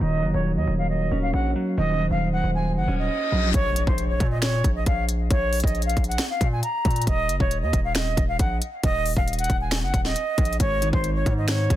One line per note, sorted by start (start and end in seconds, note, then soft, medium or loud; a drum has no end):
0.01 0.25 D#1 loud
0.01 1.12 D#3 medium
0.01 3.51 A#3 medium
0.01 3.51 D#4 medium
0.01 3.51 F#4 medium
0.01 1.76 C#5 medium
0.01 0.32 D#5 loud
0.23 0.34 F#1 loud
0.23 1.33 F#3 medium
0.34 0.58 D#1 loud
0.34 0.52 C#5 medium
0.56 0.67 D#2 loud
0.56 0.74 D#5 medium
0.67 1.10 D#1 loud
0.78 0.87 F5 medium
0.89 1.20 D#5 medium
1.11 1.33 D#1 loud
1.11 2.22 C#4 medium
1.22 1.31 F5 medium
1.33 1.55 A#1 loud
1.33 1.51 F#5 medium
1.56 1.98 F#3 medium
1.78 2.09 D#1 loud
1.78 2.88 D#3 medium
1.78 3.52 C5 medium
1.78 2.09 D#5 loud
1.99 3.10 F#3 medium
2.11 2.42 D#1 loud
2.11 2.28 F5 medium
2.33 2.51 F#5 medium
2.44 2.78 D#1 loud
2.55 2.73 G#5 medium
2.66 reverse cymbal medium
2.77 2.87 F#1 loud
2.77 2.95 F#5 medium
2.88 3.09 D#1 loud
2.88 3.54 C#4 medium
2.99 3.51 D#5 medium
3.32 3.53 A#1 loud
3.32 3.54 F#3 medium
3.54 3.86 A#1 loud
3.54 3.85 C#5 loud
3.54 kick loud
3.54 closed hi-hat medium
3.54 impact medium
3.76 closed hi-hat medium
3.87 4.19 A#1 loud
3.87 4.05 C5 medium
3.87 kick medium
3.98 closed hi-hat medium
4.09 4.27 C#5 medium
4.20 4.63 A#2 loud
4.20 kick medium
4.20 closed hi-hat medium
4.31 4.40 D#5 medium
4.42 4.73 C#5 medium
4.42 finger snap medium
4.42 snare loud
4.42 closed hi-hat medium
4.64 4.86 A#1 loud
4.64 kick loud
4.64 closed hi-hat medium
4.75 4.84 D#5 medium
4.86 5.29 A#1 loud
4.86 5.04 F5 medium
4.86 kick loud
4.86 closed hi-hat medium
5.09 closed hi-hat medium
5.30 5.62 A#1 loud
5.30 5.62 C#5 medium
5.30 kick loud
5.30 closed hi-hat medium
5.53 closed hi-hat soft
5.53 open hi-hat medium
5.60 5.95 A#1 loud
5.60 5.81 D#5 medium
5.60 kick medium
5.60 closed hi-hat medium
5.67 closed hi-hat medium
5.75 closed hi-hat soft
5.82 6.04 F5 medium
5.82 closed hi-hat soft
5.89 closed hi-hat soft
5.97 6.18 A#1 loud
5.97 kick medium
5.97 closed hi-hat medium
6.04 6.26 F#5 medium
6.04 closed hi-hat medium
6.11 closed hi-hat medium
6.18 finger snap medium
6.18 snare loud
6.18 closed hi-hat medium
6.30 6.48 F5 medium
6.41 6.62 A#2 loud
6.41 kick loud
6.41 closed hi-hat medium
6.52 6.61 G#5 medium
6.63 7.04 A#5 medium
6.63 closed hi-hat medium
6.85 7.06 A#2 loud
6.85 kick loud
6.85 closed hi-hat soft
6.91 closed hi-hat medium
6.96 closed hi-hat medium
7.02 closed hi-hat medium
7.07 7.31 D#1 loud
7.07 7.38 D#5 loud
7.07 kick loud
7.07 closed hi-hat medium
7.29 7.40 F#1 loud
7.29 closed hi-hat medium
7.40 7.64 D#1 loud
7.40 7.58 C#5 medium
7.40 kick medium
7.51 closed hi-hat medium
7.62 7.73 D#2 loud
7.62 7.80 D#5 medium
7.73 8.16 D#1 loud
7.73 kick medium
7.73 closed hi-hat medium
7.84 7.93 F5 medium
7.95 8.26 D#5 medium
7.95 finger snap medium
7.95 snare loud
7.95 closed hi-hat medium
8.17 8.38 D#1 loud
8.17 kick loud
8.17 closed hi-hat medium
8.28 8.37 F5 medium
8.39 8.61 A#1 loud
8.39 8.57 F#5 medium
8.39 kick loud
8.39 closed hi-hat medium
8.62 closed hi-hat medium
8.83 9.15 D#1 loud
8.83 9.15 D#5 loud
8.83 kick loud
8.83 closed hi-hat medium
9.06 open hi-hat medium
9.17 9.48 D#1 loud
9.17 9.34 F5 medium
9.17 kick medium
9.28 closed hi-hat medium
9.33 closed hi-hat medium
9.39 9.57 F#5 medium
9.39 closed hi-hat medium
9.44 closed hi-hat medium
9.50 9.84 D#1 loud
9.50 kick loud
9.50 closed hi-hat medium
9.61 9.79 G#5 medium
9.71 finger snap medium
9.71 snare loud
9.71 closed hi-hat medium
9.83 9.93 F#1 loud
9.83 10.01 F#5 medium
9.94 10.15 D#1 loud
9.94 kick loud
9.94 closed hi-hat medium
10.05 10.57 D#5 medium
10.05 snare medium
10.16 closed hi-hat medium
10.38 10.59 A#1 loud
10.38 kick loud
10.38 closed hi-hat medium
10.45 closed hi-hat medium
10.53 closed hi-hat soft
10.60 10.92 G#1 loud
10.60 11.70 G#2 medium
10.60 10.91 C#5 loud
10.60 kick loud
10.60 closed hi-hat medium
10.82 11.76 D#3 medium
10.82 closed hi-hat medium
10.93 11.25 G#1 loud
10.93 11.11 C5 medium
10.93 kick medium
11.04 closed hi-hat medium
11.15 11.33 C#5 medium
11.26 11.69 G#2 loud
11.26 kick medium
11.26 closed hi-hat medium
11.37 11.46 D#5 medium
11.48 11.76 C#5 medium
11.48 finger snap medium
11.48 snare loud
11.48 closed hi-hat medium
11.70 11.76 G#1 loud
11.70 11.76 G#3 medium
11.70 kick loud
11.70 closed hi-hat medium